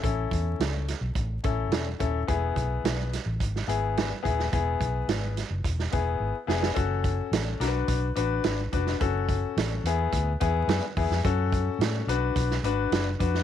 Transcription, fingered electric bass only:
\new Staff \with { instrumentName = "Fingered electric bass" } { \clef bass \time 4/4 \key e \mixolydian \tempo 4 = 107 a,,8 e,8 cis,8. b,,16 a,,8 a,,8 e,,8 dis,,8 | e,,8 b,,8 b,,8. a,,16 gis,,8 gis,,4 dis,,8 | e,,8 b,,8 gis,,8. fis,,16 e,,8 e,,8 gis,,16 r16 f,,8 | fis,,4 a,,8 b,,8 b,,8 a,,8 gis,,8 f,,8 |
fis,,4 a,,8 e,8 d,8 e,8 fis,16 r16 e,16 f,16 | fis,4 a,8 b,,8 b,,8 gis,,8 fis,,8 f,8 | }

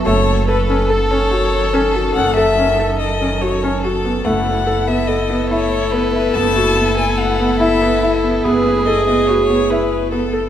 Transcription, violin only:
\new Staff \with { instrumentName = "Violin" } { \time 5/4 \key a \lydian \tempo 4 = 143 cis''4 b'8 b'8 a'8 cis''4. a'4 | fis''8 e''4. dis''4 cis''4 a'4 | fis''4. e''8 dis''4 cis''4 b'8 b'8 | a''4. gis''8 fis''4 e''4. r8 |
b'4 dis''8 dis''8 \tuplet 3/2 { cis''16 b'16 cis''4 } b'4 a'4 | }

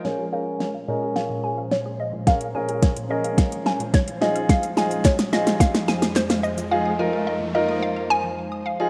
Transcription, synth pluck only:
\new Staff \with { instrumentName = "Synth pluck" } { \time 4/4 \key bes \minor \tempo 4 = 108 des''8 f''8 des''8 ees''8 f''8 aes''8 des''8 ees''8 | f''8 aes''8 des''8 ees''8 f''8 aes''8 des''8 ees''8 | f''8 aes''8 des''8 ees''8 f''8 aes''8 c''8 ees''8 | f''8 aes''8 ees''8 ees''8 f''8 aes''4 f''8 | }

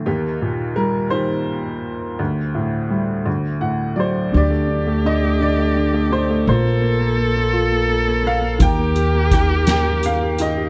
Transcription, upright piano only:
<<
  \new Staff \with { instrumentName = "Upright piano" } { \time 6/8 \key d \phrygian \tempo 4. = 56 << { g'4 bes'8 c''4.~ | c''2 fis''8 <c'' d''>8 | d''4 ees''8 d''4 c''8 | c''4. r4 f''8 |
g''4 g''8 g''8 f''8 ees''8 | } \\ { bes4. g'4.~ | g'4. r4. | g'4. r4. | f'4. r4. |
bes'4. r4. | } >> }
  \new Staff \with { instrumentName = "Upright piano" } { \time 6/8 \key d \phrygian ees,8 bes,8 g8 ees4. | d,8 a,8 g8 d,8 a,8 fis8 | d16 a16 d16 a16 d16 a16 d16 a16 d16 a16 d16 a16 | bes16 bes16 bes16 bes16 bes16 bes16 f'16 bes16 bes16 bes16 bes16 bes16 |
ees16 bes16 g'16 bes16 ees16 g'16 bes16 g'16 bes16 g'16 ees16 g'16 | }
>>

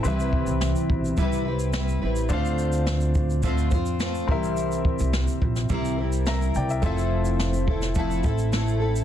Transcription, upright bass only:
\new Staff \with { instrumentName = "Upright bass" } { \clef bass \time 4/4 \key c \major \tempo 4 = 106 c,8. c,8 r16 b,,8 c,4. a,,8 | d,2~ d,8 f,4 c,8~ | c,8 r16 c,8 r16 bes,,8 c,4. c,8 | f,,2~ f,,8 a,,4. | }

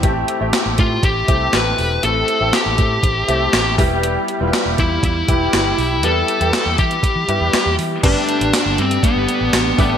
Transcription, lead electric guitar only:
\new Staff \with { instrumentName = "Lead electric guitar" } { \time 4/4 \key e \phrygian \tempo 4 = 120 r4. f'8 g'4 b'4 | a'4 g'2~ g'8 r8 | r4. e'8 e'2 | a'4. g'2 r8 |
d'4 d'8 c'8 b4 b8 b8 | }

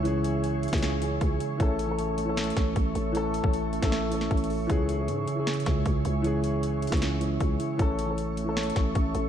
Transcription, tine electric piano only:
\new Staff \with { instrumentName = "Tine electric piano" } { \time 4/4 \key cis \minor \tempo 4 = 155 <cis gis e'>4. cis8 cis8 gis4 e'8 | a4. a8 a8 cis'4 a'8 | a4. a8 a8 cis'4 a'8 | cis4. cis8 cis8 gis4 e'8 |
cis4. cis8 cis8 gis4 e'8 | a4. a8 a8 cis'4 a'8 | }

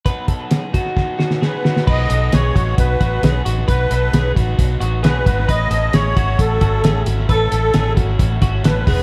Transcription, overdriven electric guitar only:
\new Staff \with { instrumentName = "Overdriven electric guitar" } { \time 4/4 \key b \mixolydian \tempo 4 = 133 <b, fis b dis'>4. <fis b dis'>8 <b, fis b dis'>4 <b, fis b dis'>8 <b, fis b dis'>8 | <b, fis b dis'>8 <fis b dis'>8 <b, fis b dis'>8 <fis b dis'>8 <b, fis b dis'>8 <fis b dis'>8 <b, fis b dis'>8 <fis b dis'>8 | <b, fis b dis'>8 <fis b dis'>8 <b, fis b dis'>8 <fis b dis'>8 <b, fis b dis'>8 <fis b dis'>8 <b, fis b dis'>8 <fis b dis'>8 | <a, fis cis' e'>8 <fis cis' e'>8 <a, fis cis' e'>8 <fis cis' e'>8 <a, fis cis' e'>8 <fis cis' e'>8 <a, fis cis' e'>8 <fis cis' e'>8 |
<a, fis cis' e'>8 <fis cis' e'>8 <a, fis cis' e'>8 <fis cis' e'>8 <a, fis cis' e'>8 <fis cis' e'>8 <a, fis cis' e'>8 <gis b dis'>8 | }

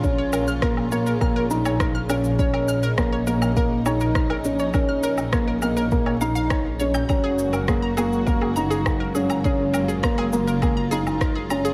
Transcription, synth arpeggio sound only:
\new Staff \with { instrumentName = "Synth arpeggio sound" } { \time 4/4 \key bes \minor \tempo 4 = 102 r16 des''16 bes'16 f'''16 bes'16 r16 des''16 bes'16 f'''16 bes'16 r16 des''16 bes'16 f'''16 bes'16 r16 | des''16 bes'16 f'''16 bes'16 r16 des''16 bes'16 f'''16 bes'16 r16 des''16 bes'16 f'''16 bes'16 r16 des''16 | bes'16 f'''16 bes'16 r16 des''16 bes'16 f'''16 bes'16 r16 des''16 f''16 f''16 des''16 r16 des''16 g'''16 | bes''16 aes'16 r16 bes'16 aes'16 bes''16 aes'16 r16 bes'16 aes'16 bes''16 aes'16 r16 bes'16 aes'16 bes''16 |
aes'16 r16 bes'16 aes'16 bes''16 aes'16 r16 bes'16 aes'16 bes''16 aes'16 r16 bes'16 aes'16 bes''16 aes'16 | }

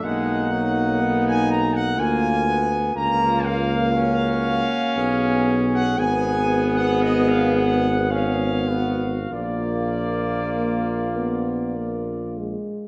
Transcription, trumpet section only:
\new Staff \with { instrumentName = "Trumpet section" } { \time 3/4 \key bes \phrygian \tempo 4 = 58 fis''4~ fis''16 aes''16 ais''16 fis''16 aes''4 | bes''8 f''2~ f''16 ges''16 | aes''8. ges''16 ees''16 f''16 ges''8 f''4 | d''2~ d''8 r8 | }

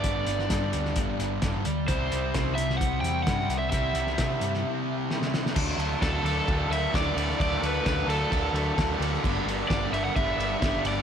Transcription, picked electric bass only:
\new Staff \with { instrumentName = "Picked electric bass" } { \clef bass \time 4/4 \key d \mixolydian \tempo 4 = 130 g,,8 g,,8 g,8 d,8 g,,8 g,,8 g,,8 d,8 | c,8 c,8 c,8 c,8 c,8 e,8 g,8 c,8 | c,8 c,8 c8 g,8 r2 | d,8 d,8 d,8 d,8 d,8 d,8 d,8 d,8 |
d,8 d,8 d,8 d,8 d,8 d,8 d,8 d,8 | g,,8 g,,8 g,,8 g,,8 g,,8 g,,8 g,,8 g,,8 | }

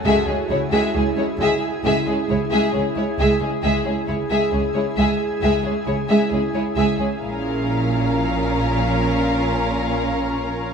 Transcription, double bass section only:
\new Staff \with { instrumentName = "Double bass section" } { \clef bass \time 4/4 \key des \mixolydian \tempo 4 = 67 des,16 r16 des,16 r16 des,16 r16 des,16 r16 des,16 r16 des,16 r16 des,16 r16 des,16 r16 | des,16 r16 des,16 r16 des,16 r16 des,16 r16 des,16 r16 des,16 r16 des,16 r16 des,16 r16 | bes,,1 | }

